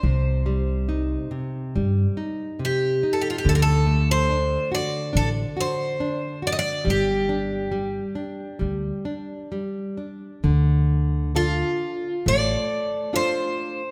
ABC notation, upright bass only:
X:1
M:4/4
L:1/8
Q:1/4=70
K:Cdor
V:1 name="Upright bass" clef=bass
C,,4 G,, z3 | D,,4 A,,, z3 | G,,,4 D,, z3 | [K:Dm] D,,4 A,,, z3 |]